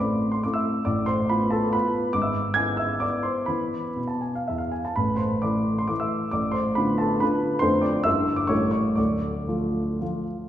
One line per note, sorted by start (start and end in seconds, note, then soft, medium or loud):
0.00 0.45 A1 soft
0.00 0.46 A2 soft
0.00 0.40 A3 soft
0.00 0.40 C4 soft
0.00 0.41 E4 soft
0.00 0.45 B4 soft
0.00 0.45 C5 soft
0.00 0.31 D5 soft
0.00 0.46 B5 medium
0.00 0.32 C6 soft
0.00 0.32 D6 medium
0.32 0.43 C6 medium
0.43 0.83 A3 soft
0.43 0.83 C4 soft
0.43 0.83 E4 soft
0.43 0.54 D6 medium
0.54 0.84 E5 soft
0.54 0.86 E6 medium
0.85 1.28 A1 soft
0.85 1.29 A2 soft
0.85 1.05 D5 soft
0.85 1.07 D6 medium
1.06 1.28 C5 soft
1.06 1.29 C6 medium
1.29 1.70 B3 soft
1.29 1.70 F4 soft
1.29 1.51 B4 soft
1.29 1.52 B5 medium
1.50 1.72 A4 soft
1.50 1.73 A5 medium
1.73 2.11 B3 soft
1.73 2.12 F4 soft
1.73 2.12 B4 medium
1.73 2.15 B5 medium
2.13 2.56 G#1 soft
2.13 2.55 G#2 soft
2.13 2.24 D6 medium
2.22 2.54 E5 soft
2.22 2.56 E6 medium
2.54 2.98 B3 soft
2.54 2.99 E4 soft
2.54 2.78 G#5 medium
2.54 2.79 G#6 medium
2.77 3.01 E5 soft
2.77 3.02 E6 medium
3.00 3.44 B3 soft
3.00 3.44 E4 soft
3.00 3.24 D5 soft
3.00 3.25 D6 medium
3.23 3.47 C5 soft
3.23 3.48 C6 medium
3.46 3.83 E3 soft
3.46 3.88 B3 soft
3.46 3.87 E4 soft
3.46 4.06 B4 soft
3.46 4.09 B5 medium
3.96 4.32 B2 soft
4.08 4.22 A5 soft
4.21 4.35 G#5 soft
4.35 4.48 F5 soft
4.48 4.82 E2 soft
4.48 4.60 E5 soft
4.58 4.72 F5 soft
4.72 4.84 G#5 soft
4.85 4.96 A5 soft
4.96 5.43 A1 soft
4.96 5.43 A2 soft
4.96 5.18 B4 soft
4.96 5.19 B5 medium
5.16 5.41 C5 soft
5.16 5.42 C6 soft
5.42 5.86 E3 soft
5.42 5.87 A3 soft
5.42 5.87 E4 soft
5.42 5.76 D5 soft
5.42 5.79 D6 medium
5.78 5.90 C6 medium
5.88 6.28 E3 soft
5.88 6.28 A3 soft
5.88 6.29 E4 soft
5.88 6.00 D6 medium
6.00 6.30 E5 soft
6.00 6.32 E6 medium
6.31 6.77 A1 soft
6.31 6.77 A2 soft
6.31 6.53 D5 soft
6.31 6.54 D6 medium
6.52 6.75 C5 soft
6.52 6.76 C6 medium
6.75 7.18 D3 soft
6.75 7.18 B3 soft
6.75 7.18 F4 soft
6.75 6.98 B4 soft
6.75 6.99 B5 medium
6.98 7.20 A4 soft
6.98 7.21 A5 medium
7.20 7.59 D3 soft
7.20 7.59 B3 soft
7.20 7.59 F4 soft
7.20 7.60 B4 medium
7.20 7.62 B5 medium
7.59 8.04 F1 soft
7.59 8.04 F2 soft
7.59 8.01 D3 soft
7.59 8.01 A3 soft
7.59 8.02 F4 soft
7.59 7.82 C5 medium
7.59 7.82 C6 medium
7.81 8.04 D5 soft
7.81 8.05 D6 medium
8.04 8.50 G1 soft
8.04 8.50 G2 medium
8.04 8.47 G3 soft
8.04 8.48 A#3 soft
8.04 8.47 E4 soft
8.04 8.37 E5 medium
8.04 8.39 E6 medium
8.36 8.50 D6 medium
8.47 8.95 A1 soft
8.47 8.95 A2 soft
8.47 8.93 G3 soft
8.47 8.93 A#3 soft
8.47 8.94 E4 soft
8.47 8.70 C#5 medium
8.47 8.70 C#6 medium
8.71 8.95 C#5 soft
8.71 8.96 C#6 medium
8.95 9.47 D1 soft
8.95 9.47 D2 soft
8.95 10.23 D5 soft
8.95 10.25 D6 medium
9.47 9.97 F3 soft
9.47 9.97 A3 soft
9.47 9.97 F4 soft
10.01 10.47 F3 soft
10.01 10.47 A3 soft
10.01 10.47 F4 soft